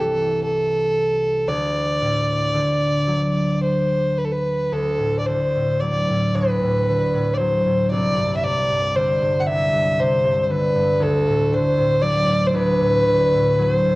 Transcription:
Already playing: C2 C3 E3 A4
0.44 A4
1.47 D2 D5
2.01 A2
2.54 D3
3.07 F#3
3.63 C5
4.18 B4
4.25 A4
4.32 B4
4.72 D2 A4
4.98 A2
5.19 D5
5.26 D3 C5
5.55 A2
5.80 F#3 D5
6.09 A2
6.34 D2 B4
6.62 A2
6.89 D3
7.14 A2
7.34 C5 D5
7.39 F#3
7.66 A2
7.91 C2 D5
8.17 G2
8.37 E5
8.44 C3 D5
8.70 G2
8.96 D3 C5
9.22 G2
9.40 F#5
9.47 C2 E5
9.73 G2
9.99 C3 C5
10.24 G2
10.43 C5
10.50 D3 B4
10.75 G2
11.00 D2 A4
11.27 A2
11.51 D3 C5
11.77 A2
12.02 F#3 D5
12.27 A2
12.47 C5
12.54 D2 B4
12.80 A2
13.05 D3
13.33 A2
13.59 F#3 C5
13.85 A2

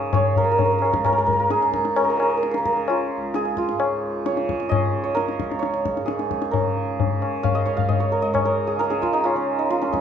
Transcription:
Already playing: C#2 G#2 C#3 G#4 A#4 C#5
0.13 C#5, tabla na, tabla ge
0.33 C#3, tabla ge
0.37 A#4
0.44 A#4
0.52 A#4
0.58 A#4, tabla tin, tabla ge
0.65 A#4
0.71 A#4
0.79 A#4, tabla na
0.85 A#4
0.90 C#2 A#4, tabla ke
1.05 A#4, tabla na, tabla ge
1.13 A#4
1.18 A#4
1.26 A#4, tabla ge
1.33 A#4
1.40 A#4
1.47 G#2 G#4, tabla te
1.62 tabla te
1.74 tabla ke
1.85 tabla te
1.96 A#4, tabla na
2.03 C#3 A#4
2.10 A#4
2.17 A#4, tabla na
2.22 A#4
2.30 A#4
2.37 A#4
2.43 A#4, tabla te
2.51 A#4, tabla te
2.58 C#3 A#4
2.65 A#4, tabla ke
2.72 A#4
2.77 tabla te
2.88 F4, tabla na
3.17 C#2
3.34 G#4, tabla te
3.45 tabla te
3.57 F4, tabla ke
3.69 G#2, tabla te
3.80 tabla na
4.26 C#3 C#5, tabla te
4.37 tabla te
4.49 tabla ke
4.60 tabla te
4.69 D#5, tabla na, tabla ge
4.85 C#3
5.04 C#5
5.15 A#4, tabla te
5.29 tabla te
5.40 C#2, tabla ke
5.51 tabla te
5.59 C#5, tabla te
5.74 tabla te
5.86 tabla ke
5.97 G#2, tabla te
6.06 G#4, tabla te
6.19 tabla te
6.31 tabla ke
6.42 tabla te
6.51 C#3 A#4, tabla tin, tabla ge
7.00 tabla tin, tabla ge
7.09 C#3
7.22 tabla na
7.43 F5, tabla na, tabla ge
7.55 D#5
7.63 C#2 C#5, tabla te
7.77 F5, tabla ge
7.89 D#5, tabla tin, tabla ge
8.00 C#5
8.12 A#4
8.22 G#2 D#5
8.34 C#5, tabla na, tabla ge
8.45 A#4
8.67 G#4
8.77 C#3 A#4, tabla te
8.90 G#4, tabla te
9.02 F4, tabla ke
9.13 D#4, tabla te
9.24 F4, tabla na
9.34 C#3 C#4
9.59 D#4
9.70 F4, tabla te
9.81 C#4, tabla te
9.89 C#2 D#4
9.94 tabla ke

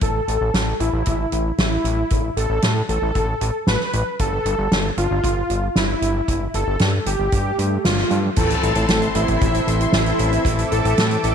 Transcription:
0.01 A1 A4, kick, closed hi-hat
0.28 A1, closed hi-hat
0.41 A1
0.54 A1, snare, closed hi-hat
0.80 A1 E4, closed hi-hat
0.93 A1
1.06 A1, kick, closed hi-hat
1.32 A1, closed hi-hat
1.58 A1 E4, snare, closed hi-hat
1.85 A1, closed hi-hat
2.10 A1, kick, closed hi-hat
2.37 A1 A4, closed hi-hat
2.50 A1
2.62 A2, snare, closed hi-hat
2.89 A1 A4, closed hi-hat
3.02 A1
3.15 A1, kick, closed hi-hat
3.41 A1, closed hi-hat
3.67 A1 B4, snare, closed hi-hat
3.80 snare
3.93 A1, closed hi-hat
4.19 G1 A4, kick, closed hi-hat
4.46 G1, closed hi-hat
4.59 G1
4.72 G1, snare, closed hi-hat
4.98 G1 F4, closed hi-hat
5.11 G1
5.24 G1, kick, closed hi-hat
5.50 G1, closed hi-hat
5.76 G1 E4, snare, closed hi-hat
6.02 G1, closed hi-hat
6.28 G1, kick, closed hi-hat
6.54 G1 A4, closed hi-hat
6.67 G1
6.79 G2, snare, closed hi-hat
7.06 G1 G4, closed hi-hat
7.19 G1
7.32 G2, kick, closed hi-hat, swell
7.59 G2, closed hi-hat
7.85 G1 F4, snare, closed hi-hat
7.98 snare
8.11 G2, closed hi-hat
8.36 A1 E3 A3 C4 E4 A4 E5 A5 C6, kick, closed hi-hat, crash, sub drop
8.50 closed hi-hat
8.63 A1, closed hi-hat
8.75 A1 E3 A3 C4 E4 A4, closed hi-hat
8.88 A1, snare, closed hi-hat
9.02 closed hi-hat
9.15 A1 E4 E5, closed hi-hat
9.28 A1, kick, closed hi-hat
9.41 A1, kick, closed hi-hat
9.54 closed hi-hat
9.67 A1, closed hi-hat
9.81 closed hi-hat
9.92 A1 E4 E5, snare, closed hi-hat
10.06 closed hi-hat
10.19 A1, closed hi-hat
10.33 closed hi-hat
10.45 A1 E3 A3 C4 E4 A4 D6, kick, closed hi-hat
10.59 closed hi-hat
10.71 A1 A4 A5, closed hi-hat
10.85 A1 E3 A3 C4 E4 A4, closed hi-hat
10.98 A2, snare, closed hi-hat
11.11 closed hi-hat
11.24 A1 A4 A5, closed hi-hat

